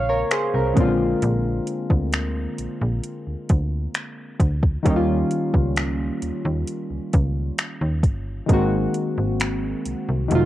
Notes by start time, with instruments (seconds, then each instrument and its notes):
Already playing: fm bass A#1, synth keys C#3 G#3 A#3 C4 F4 C#5 F5
0.09 synth keys A#4 C#5
0.31 synth keys G#4 C5, finger snap, closed hi-hat
0.54 fm bass C2, synth keys A#4
0.74 fm bass A#1, synth keys C#3 G#3 A#3, kick, closed hi-hat
0.79 synth keys D3 C4 F4
1.22 fm bass A#1, closed hi-hat
1.67 closed hi-hat
1.90 fm bass D2, kick
2.13 finger snap, closed hi-hat
2.58 fm bass A#1, closed hi-hat
2.82 fm bass A#1
3.03 closed hi-hat
3.27 fm bass D2
3.49 fm bass D2, kick, closed hi-hat
3.95 finger snap, closed hi-hat
4.40 fm bass D2, kick, closed hi-hat
4.63 kick
4.83 fm bass D#2, synth keys D#3 G3 A#3, kick, closed hi-hat
4.88 synth keys C#4 D#4
4.96 synth keys F4
5.31 closed hi-hat
5.54 fm bass C#2, kick
5.76 finger snap, closed hi-hat
6.22 fm bass D#2, closed hi-hat
6.45 fm bass D#2
6.67 closed hi-hat
6.91 fm bass C#2
7.13 fm bass C#2, kick, closed hi-hat
7.58 finger snap, closed hi-hat
7.81 fm bass D#2
8.03 fm bass G1, kick, closed hi-hat
8.46 fm bass G#1, synth keys D#3 G#3 A#3, kick, closed hi-hat
8.52 synth keys C4 F#4
8.94 closed hi-hat
9.18 fm bass G#1
9.40 finger snap, closed hi-hat
9.86 fm bass C2, closed hi-hat
10.09 fm bass C2
10.28 fm bass F1, synth keys D#3 F#3 A3, closed hi-hat
10.33 synth keys C3 F4